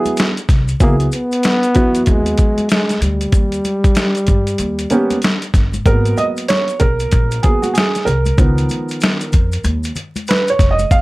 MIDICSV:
0, 0, Header, 1, 5, 480
1, 0, Start_track
1, 0, Key_signature, 5, "minor"
1, 0, Tempo, 631579
1, 611, Time_signature, 4, 2, 24, 8
1, 8372, End_track
2, 0, Start_track
2, 0, Title_t, "Upright piano"
2, 0, Program_c, 0, 0
2, 0, Note_on_c, 0, 54, 66
2, 0, Note_on_c, 0, 59, 65
2, 0, Note_on_c, 0, 64, 64
2, 0, Note_on_c, 0, 68, 83
2, 187, Note_off_c, 0, 54, 0
2, 189, Note_off_c, 0, 59, 0
2, 191, Note_off_c, 0, 64, 0
2, 191, Note_off_c, 0, 68, 0
2, 608, Note_on_c, 0, 54, 66
2, 610, Note_on_c, 0, 59, 61
2, 614, Note_on_c, 0, 64, 63
2, 618, Note_on_c, 0, 68, 73
2, 795, Note_off_c, 0, 54, 0
2, 795, Note_off_c, 0, 59, 0
2, 798, Note_off_c, 0, 64, 0
2, 800, Note_off_c, 0, 68, 0
2, 1327, Note_on_c, 0, 54, 75
2, 1329, Note_on_c, 0, 59, 65
2, 1332, Note_on_c, 0, 64, 64
2, 1337, Note_on_c, 0, 66, 81
2, 2012, Note_off_c, 0, 54, 0
2, 2014, Note_off_c, 0, 59, 0
2, 2015, Note_off_c, 0, 64, 0
2, 2017, Note_off_c, 0, 66, 0
2, 3728, Note_on_c, 0, 58, 77
2, 3733, Note_on_c, 0, 59, 73
2, 3734, Note_on_c, 0, 61, 71
2, 3739, Note_on_c, 0, 67, 86
2, 3915, Note_off_c, 0, 58, 0
2, 3917, Note_off_c, 0, 59, 0
2, 3917, Note_off_c, 0, 61, 0
2, 3920, Note_off_c, 0, 67, 0
2, 4450, Note_on_c, 0, 54, 49
2, 4454, Note_on_c, 0, 58, 46
2, 4455, Note_on_c, 0, 70, 90
2, 4460, Note_on_c, 0, 59, 58
2, 4676, Note_off_c, 0, 70, 0
2, 4693, Note_on_c, 0, 75, 93
2, 4747, Note_off_c, 0, 75, 0
2, 4929, Note_on_c, 0, 73, 91
2, 5153, Note_off_c, 0, 73, 0
2, 5166, Note_on_c, 0, 70, 88
2, 5640, Note_off_c, 0, 54, 0
2, 5641, Note_off_c, 0, 58, 0
2, 5644, Note_off_c, 0, 59, 0
2, 5645, Note_on_c, 0, 68, 82
2, 5651, Note_on_c, 0, 54, 45
2, 5653, Note_on_c, 0, 58, 39
2, 5656, Note_on_c, 0, 59, 50
2, 5663, Note_off_c, 0, 70, 0
2, 5792, Note_on_c, 0, 66, 75
2, 5801, Note_off_c, 0, 68, 0
2, 5867, Note_off_c, 0, 54, 0
2, 5868, Note_off_c, 0, 58, 0
2, 5869, Note_off_c, 0, 59, 0
2, 5879, Note_on_c, 0, 68, 81
2, 5890, Note_off_c, 0, 66, 0
2, 6108, Note_off_c, 0, 68, 0
2, 6119, Note_on_c, 0, 70, 80
2, 6365, Note_on_c, 0, 51, 53
2, 6369, Note_on_c, 0, 53, 50
2, 6374, Note_on_c, 0, 59, 60
2, 7058, Note_off_c, 0, 51, 0
2, 7060, Note_off_c, 0, 53, 0
2, 7062, Note_off_c, 0, 59, 0
2, 7295, Note_off_c, 0, 70, 0
2, 7819, Note_on_c, 0, 71, 79
2, 7964, Note_off_c, 0, 71, 0
2, 7979, Note_on_c, 0, 73, 85
2, 8138, Note_on_c, 0, 75, 85
2, 8140, Note_off_c, 0, 73, 0
2, 8295, Note_on_c, 0, 77, 96
2, 8299, Note_off_c, 0, 75, 0
2, 8372, Note_off_c, 0, 77, 0
2, 8372, End_track
3, 0, Start_track
3, 0, Title_t, "Trombone"
3, 0, Program_c, 1, 57
3, 631, Note_on_c, 1, 58, 96
3, 735, Note_off_c, 1, 58, 0
3, 870, Note_on_c, 1, 59, 117
3, 1587, Note_on_c, 1, 56, 95
3, 1598, Note_off_c, 1, 59, 0
3, 2059, Note_off_c, 1, 56, 0
3, 2067, Note_on_c, 1, 56, 87
3, 2283, Note_off_c, 1, 56, 0
3, 2303, Note_on_c, 1, 55, 93
3, 4186, Note_off_c, 1, 55, 0
3, 8372, End_track
4, 0, Start_track
4, 0, Title_t, "Upright bass"
4, 0, Program_c, 2, 32
4, 372, Note_on_c, 2, 36, 96
4, 562, Note_off_c, 2, 36, 0
4, 611, Note_on_c, 2, 37, 97
4, 801, Note_off_c, 2, 37, 0
4, 1336, Note_on_c, 2, 40, 87
4, 1524, Note_off_c, 2, 40, 0
4, 1575, Note_on_c, 2, 39, 93
4, 1764, Note_off_c, 2, 39, 0
4, 2287, Note_on_c, 2, 38, 83
4, 2478, Note_off_c, 2, 38, 0
4, 2527, Note_on_c, 2, 39, 93
4, 2718, Note_off_c, 2, 39, 0
4, 3252, Note_on_c, 2, 43, 79
4, 3442, Note_off_c, 2, 43, 0
4, 3487, Note_on_c, 2, 39, 86
4, 3679, Note_off_c, 2, 39, 0
4, 4209, Note_on_c, 2, 31, 79
4, 4400, Note_off_c, 2, 31, 0
4, 4451, Note_on_c, 2, 32, 93
4, 4641, Note_off_c, 2, 32, 0
4, 5174, Note_on_c, 2, 35, 92
4, 5363, Note_off_c, 2, 35, 0
4, 5415, Note_on_c, 2, 34, 97
4, 5604, Note_off_c, 2, 34, 0
4, 6129, Note_on_c, 2, 36, 90
4, 6320, Note_off_c, 2, 36, 0
4, 6372, Note_on_c, 2, 37, 90
4, 6562, Note_off_c, 2, 37, 0
4, 7097, Note_on_c, 2, 41, 82
4, 7285, Note_off_c, 2, 41, 0
4, 7328, Note_on_c, 2, 39, 98
4, 7519, Note_off_c, 2, 39, 0
4, 8049, Note_on_c, 2, 29, 88
4, 8240, Note_off_c, 2, 29, 0
4, 8290, Note_on_c, 2, 30, 89
4, 8372, Note_off_c, 2, 30, 0
4, 8372, End_track
5, 0, Start_track
5, 0, Title_t, "Drums"
5, 43, Note_on_c, 9, 63, 66
5, 43, Note_on_c, 9, 82, 50
5, 44, Note_on_c, 9, 42, 45
5, 119, Note_off_c, 9, 63, 0
5, 119, Note_off_c, 9, 82, 0
5, 120, Note_off_c, 9, 42, 0
5, 129, Note_on_c, 9, 82, 57
5, 131, Note_on_c, 9, 42, 66
5, 150, Note_on_c, 9, 38, 100
5, 205, Note_off_c, 9, 82, 0
5, 207, Note_off_c, 9, 42, 0
5, 226, Note_off_c, 9, 38, 0
5, 284, Note_on_c, 9, 42, 52
5, 285, Note_on_c, 9, 82, 42
5, 360, Note_off_c, 9, 42, 0
5, 361, Note_off_c, 9, 82, 0
5, 371, Note_on_c, 9, 36, 90
5, 372, Note_on_c, 9, 64, 52
5, 372, Note_on_c, 9, 82, 40
5, 379, Note_on_c, 9, 42, 72
5, 384, Note_on_c, 9, 38, 33
5, 447, Note_off_c, 9, 36, 0
5, 448, Note_off_c, 9, 64, 0
5, 448, Note_off_c, 9, 82, 0
5, 455, Note_off_c, 9, 42, 0
5, 460, Note_off_c, 9, 38, 0
5, 518, Note_on_c, 9, 82, 46
5, 523, Note_on_c, 9, 42, 39
5, 594, Note_off_c, 9, 82, 0
5, 599, Note_off_c, 9, 42, 0
5, 609, Note_on_c, 9, 82, 64
5, 611, Note_on_c, 9, 36, 122
5, 612, Note_on_c, 9, 42, 77
5, 685, Note_off_c, 9, 82, 0
5, 687, Note_off_c, 9, 36, 0
5, 688, Note_off_c, 9, 42, 0
5, 760, Note_on_c, 9, 42, 43
5, 761, Note_on_c, 9, 82, 42
5, 836, Note_off_c, 9, 42, 0
5, 837, Note_off_c, 9, 82, 0
5, 850, Note_on_c, 9, 82, 43
5, 859, Note_on_c, 9, 42, 66
5, 926, Note_off_c, 9, 82, 0
5, 935, Note_off_c, 9, 42, 0
5, 1001, Note_on_c, 9, 82, 41
5, 1009, Note_on_c, 9, 42, 58
5, 1077, Note_off_c, 9, 82, 0
5, 1085, Note_off_c, 9, 42, 0
5, 1089, Note_on_c, 9, 42, 93
5, 1090, Note_on_c, 9, 82, 53
5, 1102, Note_on_c, 9, 38, 114
5, 1165, Note_off_c, 9, 42, 0
5, 1166, Note_off_c, 9, 82, 0
5, 1178, Note_off_c, 9, 38, 0
5, 1239, Note_on_c, 9, 42, 51
5, 1242, Note_on_c, 9, 82, 44
5, 1315, Note_off_c, 9, 42, 0
5, 1318, Note_off_c, 9, 82, 0
5, 1327, Note_on_c, 9, 42, 79
5, 1330, Note_on_c, 9, 64, 50
5, 1330, Note_on_c, 9, 82, 38
5, 1336, Note_on_c, 9, 36, 86
5, 1403, Note_off_c, 9, 42, 0
5, 1406, Note_off_c, 9, 64, 0
5, 1406, Note_off_c, 9, 82, 0
5, 1412, Note_off_c, 9, 36, 0
5, 1479, Note_on_c, 9, 42, 51
5, 1484, Note_on_c, 9, 82, 48
5, 1555, Note_off_c, 9, 42, 0
5, 1560, Note_off_c, 9, 82, 0
5, 1566, Note_on_c, 9, 42, 81
5, 1573, Note_on_c, 9, 82, 62
5, 1574, Note_on_c, 9, 36, 90
5, 1642, Note_off_c, 9, 42, 0
5, 1649, Note_off_c, 9, 82, 0
5, 1650, Note_off_c, 9, 36, 0
5, 1717, Note_on_c, 9, 42, 53
5, 1718, Note_on_c, 9, 82, 44
5, 1793, Note_off_c, 9, 42, 0
5, 1794, Note_off_c, 9, 82, 0
5, 1805, Note_on_c, 9, 42, 70
5, 1814, Note_on_c, 9, 36, 85
5, 1815, Note_on_c, 9, 64, 57
5, 1815, Note_on_c, 9, 82, 42
5, 1881, Note_off_c, 9, 42, 0
5, 1890, Note_off_c, 9, 36, 0
5, 1891, Note_off_c, 9, 64, 0
5, 1891, Note_off_c, 9, 82, 0
5, 1959, Note_on_c, 9, 42, 46
5, 1961, Note_on_c, 9, 63, 66
5, 1961, Note_on_c, 9, 82, 45
5, 2035, Note_off_c, 9, 42, 0
5, 2037, Note_off_c, 9, 63, 0
5, 2037, Note_off_c, 9, 82, 0
5, 2044, Note_on_c, 9, 42, 68
5, 2051, Note_on_c, 9, 82, 59
5, 2064, Note_on_c, 9, 38, 99
5, 2120, Note_off_c, 9, 42, 0
5, 2127, Note_off_c, 9, 82, 0
5, 2140, Note_off_c, 9, 38, 0
5, 2199, Note_on_c, 9, 42, 53
5, 2206, Note_on_c, 9, 38, 34
5, 2207, Note_on_c, 9, 82, 44
5, 2275, Note_off_c, 9, 42, 0
5, 2282, Note_off_c, 9, 38, 0
5, 2283, Note_off_c, 9, 82, 0
5, 2294, Note_on_c, 9, 42, 75
5, 2294, Note_on_c, 9, 64, 56
5, 2294, Note_on_c, 9, 82, 38
5, 2370, Note_off_c, 9, 42, 0
5, 2370, Note_off_c, 9, 64, 0
5, 2370, Note_off_c, 9, 82, 0
5, 2439, Note_on_c, 9, 42, 43
5, 2441, Note_on_c, 9, 82, 49
5, 2515, Note_off_c, 9, 42, 0
5, 2517, Note_off_c, 9, 82, 0
5, 2526, Note_on_c, 9, 42, 80
5, 2528, Note_on_c, 9, 36, 118
5, 2534, Note_on_c, 9, 82, 64
5, 2602, Note_off_c, 9, 42, 0
5, 2604, Note_off_c, 9, 36, 0
5, 2610, Note_off_c, 9, 82, 0
5, 2675, Note_on_c, 9, 42, 47
5, 2688, Note_on_c, 9, 82, 40
5, 2751, Note_off_c, 9, 42, 0
5, 2764, Note_off_c, 9, 82, 0
5, 2772, Note_on_c, 9, 63, 46
5, 2772, Note_on_c, 9, 82, 48
5, 2773, Note_on_c, 9, 42, 63
5, 2848, Note_off_c, 9, 63, 0
5, 2848, Note_off_c, 9, 82, 0
5, 2849, Note_off_c, 9, 42, 0
5, 2920, Note_on_c, 9, 36, 95
5, 2921, Note_on_c, 9, 82, 38
5, 2924, Note_on_c, 9, 42, 53
5, 2996, Note_off_c, 9, 36, 0
5, 2997, Note_off_c, 9, 82, 0
5, 3000, Note_off_c, 9, 42, 0
5, 3002, Note_on_c, 9, 42, 85
5, 3012, Note_on_c, 9, 82, 48
5, 3015, Note_on_c, 9, 38, 116
5, 3078, Note_off_c, 9, 42, 0
5, 3088, Note_off_c, 9, 82, 0
5, 3091, Note_off_c, 9, 38, 0
5, 3153, Note_on_c, 9, 42, 50
5, 3168, Note_on_c, 9, 82, 42
5, 3229, Note_off_c, 9, 42, 0
5, 3242, Note_on_c, 9, 42, 80
5, 3244, Note_off_c, 9, 82, 0
5, 3252, Note_on_c, 9, 63, 57
5, 3252, Note_on_c, 9, 64, 55
5, 3252, Note_on_c, 9, 82, 39
5, 3253, Note_on_c, 9, 36, 88
5, 3318, Note_off_c, 9, 42, 0
5, 3328, Note_off_c, 9, 63, 0
5, 3328, Note_off_c, 9, 64, 0
5, 3328, Note_off_c, 9, 82, 0
5, 3329, Note_off_c, 9, 36, 0
5, 3396, Note_on_c, 9, 42, 50
5, 3401, Note_on_c, 9, 82, 48
5, 3472, Note_off_c, 9, 42, 0
5, 3477, Note_off_c, 9, 82, 0
5, 3483, Note_on_c, 9, 42, 82
5, 3492, Note_on_c, 9, 82, 56
5, 3559, Note_off_c, 9, 42, 0
5, 3568, Note_off_c, 9, 82, 0
5, 3638, Note_on_c, 9, 42, 52
5, 3640, Note_on_c, 9, 82, 46
5, 3714, Note_off_c, 9, 42, 0
5, 3716, Note_off_c, 9, 82, 0
5, 3725, Note_on_c, 9, 42, 66
5, 3733, Note_on_c, 9, 64, 55
5, 3733, Note_on_c, 9, 82, 41
5, 3801, Note_off_c, 9, 42, 0
5, 3809, Note_off_c, 9, 64, 0
5, 3809, Note_off_c, 9, 82, 0
5, 3880, Note_on_c, 9, 42, 50
5, 3881, Note_on_c, 9, 63, 64
5, 3881, Note_on_c, 9, 82, 47
5, 3956, Note_off_c, 9, 42, 0
5, 3957, Note_off_c, 9, 63, 0
5, 3957, Note_off_c, 9, 82, 0
5, 3966, Note_on_c, 9, 42, 66
5, 3973, Note_on_c, 9, 82, 59
5, 3986, Note_on_c, 9, 38, 105
5, 4042, Note_off_c, 9, 42, 0
5, 4049, Note_off_c, 9, 82, 0
5, 4062, Note_off_c, 9, 38, 0
5, 4120, Note_on_c, 9, 42, 54
5, 4125, Note_on_c, 9, 82, 43
5, 4196, Note_off_c, 9, 42, 0
5, 4201, Note_off_c, 9, 82, 0
5, 4209, Note_on_c, 9, 36, 88
5, 4211, Note_on_c, 9, 64, 53
5, 4211, Note_on_c, 9, 82, 38
5, 4215, Note_on_c, 9, 42, 67
5, 4221, Note_on_c, 9, 38, 34
5, 4285, Note_off_c, 9, 36, 0
5, 4287, Note_off_c, 9, 64, 0
5, 4287, Note_off_c, 9, 82, 0
5, 4291, Note_off_c, 9, 42, 0
5, 4297, Note_off_c, 9, 38, 0
5, 4359, Note_on_c, 9, 63, 65
5, 4359, Note_on_c, 9, 82, 48
5, 4362, Note_on_c, 9, 42, 41
5, 4435, Note_off_c, 9, 63, 0
5, 4435, Note_off_c, 9, 82, 0
5, 4438, Note_off_c, 9, 42, 0
5, 4450, Note_on_c, 9, 36, 110
5, 4453, Note_on_c, 9, 42, 83
5, 4454, Note_on_c, 9, 82, 60
5, 4526, Note_off_c, 9, 36, 0
5, 4529, Note_off_c, 9, 42, 0
5, 4530, Note_off_c, 9, 82, 0
5, 4601, Note_on_c, 9, 42, 43
5, 4605, Note_on_c, 9, 82, 42
5, 4677, Note_off_c, 9, 42, 0
5, 4681, Note_off_c, 9, 82, 0
5, 4689, Note_on_c, 9, 63, 42
5, 4689, Note_on_c, 9, 82, 45
5, 4698, Note_on_c, 9, 42, 61
5, 4765, Note_off_c, 9, 63, 0
5, 4765, Note_off_c, 9, 82, 0
5, 4774, Note_off_c, 9, 42, 0
5, 4840, Note_on_c, 9, 82, 39
5, 4848, Note_on_c, 9, 42, 58
5, 4916, Note_off_c, 9, 82, 0
5, 4924, Note_off_c, 9, 42, 0
5, 4928, Note_on_c, 9, 42, 87
5, 4931, Note_on_c, 9, 82, 52
5, 4941, Note_on_c, 9, 38, 110
5, 5004, Note_off_c, 9, 42, 0
5, 5007, Note_off_c, 9, 82, 0
5, 5017, Note_off_c, 9, 38, 0
5, 5075, Note_on_c, 9, 42, 50
5, 5087, Note_on_c, 9, 82, 43
5, 5151, Note_off_c, 9, 42, 0
5, 5163, Note_off_c, 9, 82, 0
5, 5166, Note_on_c, 9, 42, 78
5, 5169, Note_on_c, 9, 64, 51
5, 5169, Note_on_c, 9, 82, 39
5, 5175, Note_on_c, 9, 36, 80
5, 5242, Note_off_c, 9, 42, 0
5, 5245, Note_off_c, 9, 64, 0
5, 5245, Note_off_c, 9, 82, 0
5, 5251, Note_off_c, 9, 36, 0
5, 5317, Note_on_c, 9, 82, 45
5, 5320, Note_on_c, 9, 42, 52
5, 5393, Note_off_c, 9, 82, 0
5, 5396, Note_off_c, 9, 42, 0
5, 5408, Note_on_c, 9, 42, 86
5, 5409, Note_on_c, 9, 63, 43
5, 5409, Note_on_c, 9, 82, 57
5, 5416, Note_on_c, 9, 36, 88
5, 5484, Note_off_c, 9, 42, 0
5, 5485, Note_off_c, 9, 63, 0
5, 5485, Note_off_c, 9, 82, 0
5, 5492, Note_off_c, 9, 36, 0
5, 5558, Note_on_c, 9, 82, 43
5, 5562, Note_on_c, 9, 42, 52
5, 5634, Note_off_c, 9, 82, 0
5, 5638, Note_off_c, 9, 42, 0
5, 5648, Note_on_c, 9, 42, 61
5, 5650, Note_on_c, 9, 64, 60
5, 5650, Note_on_c, 9, 82, 37
5, 5655, Note_on_c, 9, 36, 87
5, 5724, Note_off_c, 9, 42, 0
5, 5726, Note_off_c, 9, 64, 0
5, 5726, Note_off_c, 9, 82, 0
5, 5731, Note_off_c, 9, 36, 0
5, 5799, Note_on_c, 9, 63, 64
5, 5799, Note_on_c, 9, 82, 49
5, 5802, Note_on_c, 9, 42, 47
5, 5875, Note_off_c, 9, 63, 0
5, 5875, Note_off_c, 9, 82, 0
5, 5878, Note_off_c, 9, 42, 0
5, 5889, Note_on_c, 9, 82, 57
5, 5890, Note_on_c, 9, 42, 67
5, 5910, Note_on_c, 9, 38, 102
5, 5965, Note_off_c, 9, 82, 0
5, 5966, Note_off_c, 9, 42, 0
5, 5986, Note_off_c, 9, 38, 0
5, 6043, Note_on_c, 9, 42, 53
5, 6044, Note_on_c, 9, 82, 46
5, 6050, Note_on_c, 9, 38, 32
5, 6119, Note_off_c, 9, 42, 0
5, 6120, Note_off_c, 9, 82, 0
5, 6126, Note_off_c, 9, 38, 0
5, 6131, Note_on_c, 9, 64, 54
5, 6131, Note_on_c, 9, 82, 38
5, 6138, Note_on_c, 9, 42, 77
5, 6207, Note_off_c, 9, 64, 0
5, 6207, Note_off_c, 9, 82, 0
5, 6214, Note_off_c, 9, 42, 0
5, 6275, Note_on_c, 9, 63, 68
5, 6275, Note_on_c, 9, 82, 48
5, 6281, Note_on_c, 9, 42, 43
5, 6351, Note_off_c, 9, 63, 0
5, 6351, Note_off_c, 9, 82, 0
5, 6357, Note_off_c, 9, 42, 0
5, 6369, Note_on_c, 9, 82, 64
5, 6370, Note_on_c, 9, 36, 114
5, 6371, Note_on_c, 9, 42, 80
5, 6445, Note_off_c, 9, 82, 0
5, 6446, Note_off_c, 9, 36, 0
5, 6447, Note_off_c, 9, 42, 0
5, 6520, Note_on_c, 9, 82, 40
5, 6522, Note_on_c, 9, 42, 48
5, 6596, Note_off_c, 9, 82, 0
5, 6598, Note_off_c, 9, 42, 0
5, 6606, Note_on_c, 9, 63, 44
5, 6606, Note_on_c, 9, 82, 43
5, 6621, Note_on_c, 9, 42, 65
5, 6682, Note_off_c, 9, 63, 0
5, 6682, Note_off_c, 9, 82, 0
5, 6697, Note_off_c, 9, 42, 0
5, 6754, Note_on_c, 9, 82, 38
5, 6774, Note_on_c, 9, 42, 54
5, 6830, Note_off_c, 9, 82, 0
5, 6845, Note_on_c, 9, 82, 49
5, 6850, Note_off_c, 9, 42, 0
5, 6854, Note_on_c, 9, 42, 92
5, 6867, Note_on_c, 9, 38, 106
5, 6921, Note_off_c, 9, 82, 0
5, 6930, Note_off_c, 9, 42, 0
5, 6943, Note_off_c, 9, 38, 0
5, 6997, Note_on_c, 9, 82, 44
5, 7000, Note_on_c, 9, 42, 54
5, 7073, Note_off_c, 9, 82, 0
5, 7076, Note_off_c, 9, 42, 0
5, 7087, Note_on_c, 9, 64, 58
5, 7087, Note_on_c, 9, 82, 41
5, 7091, Note_on_c, 9, 42, 82
5, 7097, Note_on_c, 9, 36, 82
5, 7163, Note_off_c, 9, 64, 0
5, 7163, Note_off_c, 9, 82, 0
5, 7167, Note_off_c, 9, 42, 0
5, 7173, Note_off_c, 9, 36, 0
5, 7234, Note_on_c, 9, 82, 47
5, 7244, Note_on_c, 9, 42, 52
5, 7310, Note_off_c, 9, 82, 0
5, 7320, Note_off_c, 9, 42, 0
5, 7325, Note_on_c, 9, 63, 41
5, 7325, Note_on_c, 9, 82, 59
5, 7331, Note_on_c, 9, 42, 80
5, 7401, Note_off_c, 9, 63, 0
5, 7401, Note_off_c, 9, 82, 0
5, 7407, Note_off_c, 9, 42, 0
5, 7474, Note_on_c, 9, 82, 43
5, 7486, Note_on_c, 9, 42, 53
5, 7550, Note_off_c, 9, 82, 0
5, 7562, Note_off_c, 9, 42, 0
5, 7566, Note_on_c, 9, 64, 59
5, 7566, Note_on_c, 9, 82, 42
5, 7573, Note_on_c, 9, 42, 62
5, 7642, Note_off_c, 9, 64, 0
5, 7642, Note_off_c, 9, 82, 0
5, 7649, Note_off_c, 9, 42, 0
5, 7720, Note_on_c, 9, 63, 63
5, 7720, Note_on_c, 9, 82, 47
5, 7725, Note_on_c, 9, 42, 47
5, 7796, Note_off_c, 9, 63, 0
5, 7796, Note_off_c, 9, 82, 0
5, 7801, Note_off_c, 9, 42, 0
5, 7807, Note_on_c, 9, 82, 59
5, 7814, Note_on_c, 9, 42, 67
5, 7833, Note_on_c, 9, 38, 102
5, 7883, Note_off_c, 9, 82, 0
5, 7890, Note_off_c, 9, 42, 0
5, 7909, Note_off_c, 9, 38, 0
5, 7961, Note_on_c, 9, 82, 47
5, 7967, Note_on_c, 9, 42, 54
5, 8037, Note_off_c, 9, 82, 0
5, 8043, Note_off_c, 9, 42, 0
5, 8051, Note_on_c, 9, 36, 90
5, 8053, Note_on_c, 9, 64, 49
5, 8053, Note_on_c, 9, 82, 38
5, 8059, Note_on_c, 9, 42, 74
5, 8065, Note_on_c, 9, 38, 36
5, 8127, Note_off_c, 9, 36, 0
5, 8129, Note_off_c, 9, 64, 0
5, 8129, Note_off_c, 9, 82, 0
5, 8135, Note_off_c, 9, 42, 0
5, 8141, Note_off_c, 9, 38, 0
5, 8200, Note_on_c, 9, 63, 66
5, 8200, Note_on_c, 9, 82, 51
5, 8205, Note_on_c, 9, 42, 41
5, 8276, Note_off_c, 9, 63, 0
5, 8276, Note_off_c, 9, 82, 0
5, 8281, Note_off_c, 9, 42, 0
5, 8291, Note_on_c, 9, 36, 117
5, 8292, Note_on_c, 9, 82, 62
5, 8294, Note_on_c, 9, 42, 84
5, 8367, Note_off_c, 9, 36, 0
5, 8368, Note_off_c, 9, 82, 0
5, 8370, Note_off_c, 9, 42, 0
5, 8372, End_track
0, 0, End_of_file